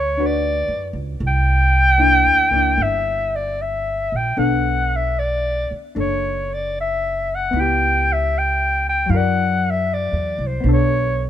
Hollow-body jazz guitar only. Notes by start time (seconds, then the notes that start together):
Already playing: G3 D4 F#4 B4
0.18 D4 F#4 B4
1.98 A#3 D4 E4
2.51 A#3 D4 E4
4.37 B3 D4 A4
5.95 D4 A4
7.51 B3
7.57 E4 G4
9.06 F#3 E4
9.14 A#4 D5
10.60 B3
10.66 D4 A4